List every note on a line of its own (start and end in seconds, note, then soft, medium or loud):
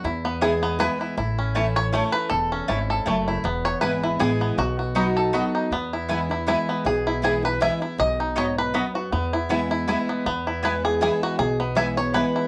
0.04 0.87 E2 loud
0.04 0.77 E2 medium
0.04 0.59 E4 medium
0.25 0.61 B3 medium
0.41 0.77 E3 medium
0.41 0.78 G#3 medium
0.41 0.51 B3 loud
0.41 0.79 B3 medium
0.41 0.52 E4 medium
0.41 0.79 E4 loud
0.41 0.80 G#4 medium
0.41 0.52 B4 loud
0.41 0.52 G#5 loud
0.63 1.14 B3 medium
0.79 1.15 E3 loud
0.79 1.16 G#3 loud
0.79 0.89 B3 medium
0.79 1.16 B3 loud
0.79 0.90 E4 medium
0.79 1.17 E4 loud
0.79 1.00 B4 loud
0.79 0.90 B4 loud
0.79 0.90 G#5 medium
1.01 1.17 E4 medium
1.17 2.00 A1 medium
1.17 1.90 A2 medium
1.17 1.56 E4 medium
1.39 1.76 C#4 medium
1.55 1.91 E3 medium
1.55 1.65 A3 medium
1.55 1.92 A3 medium
1.55 1.92 C#4 medium
1.55 1.65 E4 medium
1.55 2.69 E4 medium
1.55 1.92 E4 medium
1.55 1.65 C#5 loud
1.55 1.65 A5 loud
1.76 2.11 C#5 loud
1.93 2.29 E3 medium
1.93 2.03 A3 medium
1.93 2.30 A3 loud
1.93 2.48 A3 medium
1.93 2.30 C#4 loud
1.93 2.03 E4 medium
1.93 2.30 E4 loud
1.93 2.03 C#5 loud
1.93 2.03 A5 medium
2.13 2.31 B4 loud
2.30 2.59 E1 medium
2.30 2.68 E2 medium
2.30 2.66 A4 medium
2.52 3.04 C#4 medium
2.68 3.01 G#1 medium
2.68 3.05 G#2 medium
2.68 2.78 A3 medium
2.68 2.78 E4 medium
2.68 3.23 E4 medium
2.68 2.78 C#5 medium
2.68 2.79 A5 loud
2.90 3.42 A4 medium
3.06 3.39 F#1 medium
3.06 3.42 F#2 loud
3.06 3.16 A3 medium
3.06 3.45 A3 medium
3.06 3.16 E4 medium
3.06 3.16 C#5 medium
3.06 3.17 A5 loud
3.28 3.45 E4 medium
3.44 3.72 E1 medium
3.44 4.16 E2 medium
3.44 4.41 B3 medium
3.65 3.81 C#5 loud
3.81 4.14 G#1 medium
3.81 4.18 E3 medium
3.81 4.18 G#3 medium
3.81 3.92 B3 medium
3.81 4.19 B3 medium
3.81 3.92 E4 medium
3.81 4.19 E4 loud
3.81 4.17 B4 loud
3.81 3.92 B4 loud
3.81 3.92 G#5 loud
4.03 4.55 E4 medium
4.19 4.52 A1 loud
4.19 4.56 E3 loud
4.19 4.56 G#3 loud
4.19 4.30 B3 medium
4.19 4.57 B3 loud
4.19 4.30 E4 medium
4.19 4.57 E4 loud
4.19 4.55 G#4 loud
4.19 4.30 B4 loud
4.19 4.30 G#5 medium
4.41 5.20 B3 medium
4.57 5.41 B1 loud
4.57 5.30 B2 medium
4.57 4.78 F#4 loud
4.79 5.30 F#4 medium
4.95 5.31 F#3 medium
4.95 5.05 B3 medium
4.95 5.32 B3 medium
4.95 5.50 D#4 medium
4.95 5.32 D#4 medium
4.95 5.05 F#4 loud
4.95 5.33 F#4 loud
4.95 5.06 D#5 loud
4.95 5.06 B5 loud
5.17 5.68 A4 medium
5.33 5.70 F#3 medium
5.33 5.43 B3 medium
5.33 5.70 B3 loud
5.33 5.70 D#4 loud
5.33 5.43 F#4 medium
5.33 5.72 F#4 medium
5.33 5.71 F#4 loud
5.33 5.43 D#5 medium
5.33 5.43 B5 medium
5.55 5.72 D#4 medium
5.71 6.54 E2 medium
5.71 6.44 E2 medium
5.71 6.68 B3 medium
5.93 6.10 E4 medium
6.09 6.29 E3 medium
6.09 6.29 G#3 medium
6.09 6.19 B3 medium
6.09 6.30 B3 medium
6.09 6.19 E4 loud
6.09 6.30 E4 medium
6.09 6.28 E4 medium
6.09 6.19 B4 loud
6.09 6.19 G#5 loud
6.29 6.47 B3 soft
6.29 6.46 E4 medium
6.29 6.47 E4 medium
6.46 6.83 E3 medium
6.46 6.83 G#3 loud
6.46 6.57 B3 medium
6.46 6.84 B3 loud
6.46 6.57 E4 medium
6.46 6.86 E4 medium
6.46 6.84 E4 loud
6.46 6.57 B4 loud
6.46 6.57 G#5 loud
6.69 8.09 B3 medium
6.84 7.68 B1 medium
6.84 7.57 B2 medium
6.84 7.21 G#4 medium
7.07 7.58 E4 medium
7.22 7.42 E3 medium
7.22 7.42 G#3 medium
7.22 7.33 B3 medium
7.22 7.43 B3 medium
7.22 7.33 E4 medium
7.22 7.41 E4 loud
7.22 7.43 G#4 medium
7.22 7.33 B4 medium
7.22 7.33 G#5 loud
7.42 7.60 B3 soft
7.42 7.60 E4 medium
7.42 7.61 B4 loud
7.60 7.80 E3 medium
7.60 7.80 G#3 loud
7.60 7.70 B3 medium
7.60 7.81 B3 loud
7.60 7.71 E4 medium
7.60 7.80 E4 loud
7.60 7.71 B4 loud
7.60 7.81 E5 loud
7.60 7.71 G#5 medium
7.81 7.99 B3 soft
7.81 7.98 E4 medium
7.81 7.99 E4 medium
7.98 8.82 B1 medium
7.98 8.71 B2 medium
7.98 8.37 D#5 loud
8.20 8.71 D#4 medium
8.36 8.72 G#2 medium
8.36 8.46 B3 medium
8.36 8.46 F#4 medium
8.36 8.56 C#5 medium
8.36 8.46 D#5 loud
8.36 8.46 B5 loud
8.58 8.95 B4 medium
8.74 9.10 F#2 loud
8.74 8.84 B3 medium
8.74 9.12 B3 medium
8.74 8.84 F#4 medium
8.74 8.84 D#5 loud
8.74 8.84 B5 medium
8.95 9.12 F#4 medium
9.12 9.95 E2 loud
9.12 9.85 E2 medium
9.12 9.66 B3 medium
9.33 9.49 E4 medium
9.49 9.86 E3 medium
9.49 9.86 G#3 medium
9.49 9.60 B3 loud
9.49 9.87 B3 loud
9.49 9.60 E4 loud
9.49 9.70 E4 medium
9.49 9.87 E4 loud
9.49 9.60 B4 loud
9.49 9.60 G#5 loud
9.71 9.87 E4 medium
9.88 10.24 E3 loud
9.88 10.24 G#3 loud
9.88 9.97 B3 medium
9.88 10.25 B3 loud
9.88 9.98 E4 medium
9.88 10.26 E4 medium
9.88 10.25 E4 loud
9.88 9.98 B4 medium
9.88 9.98 G#5 loud
10.09 10.25 B3 medium
10.26 11.09 E2 loud
10.26 10.98 E2 medium
10.26 11.59 B3 medium
10.47 11.26 E4 medium
10.63 10.99 E3 medium
10.63 11.00 G#3 medium
10.63 10.73 B3 medium
10.63 11.00 B3 medium
10.63 10.73 E4 medium
10.63 11.00 E4 medium
10.63 10.73 B4 loud
10.63 10.84 B4 medium
10.63 10.73 G#5 medium
10.85 11.01 G#4 medium
11.01 11.37 E3 loud
11.01 11.38 G#3 loud
11.01 11.11 B3 medium
11.01 11.38 B3 loud
11.01 11.11 E4 medium
11.01 11.38 E4 loud
11.01 11.23 G#4 medium
11.01 11.11 B4 medium
11.01 11.11 G#5 medium
11.23 11.39 F#4 medium
11.39 12.22 B1 medium
11.39 12.11 B2 medium
11.39 11.58 G#4 loud
11.60 12.48 B3 medium
11.75 11.96 E3 medium
11.75 11.96 G#3 medium
11.75 11.86 B3 loud
11.75 11.97 B3 medium
11.75 11.87 E4 medium
11.75 11.96 E4 medium
11.75 11.87 B4 loud
11.75 11.97 E5 loud
11.75 11.87 G#5 loud
11.97 12.15 B3 soft
11.97 12.14 E4 medium
11.97 12.15 C#5 loud
12.14 12.48 E3 loud
12.14 12.48 G#3 medium
12.14 12.24 B3 medium
12.14 12.48 B3 loud
12.14 12.24 E4 medium
12.14 12.48 E4 loud
12.14 12.48 B4 loud
12.14 12.24 B4 medium
12.14 12.25 G#5 medium
12.36 12.48 E4 medium